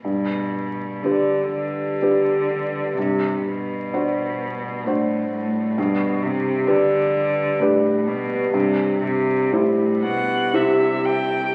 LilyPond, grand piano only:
\new Staff \with { instrumentName = "Grand piano" } { \time 3/4 \key g \major \tempo 4 = 63 g,4 <d' g' b'>4 <d' g' b'>4 | g,4 <d' fis' c''>4 <d' fis' c''>4 | g,4 <d' g' b'>4 <d' g' b'>4 | g,4 <e' g' c''>4 <e' g' c''>4 | }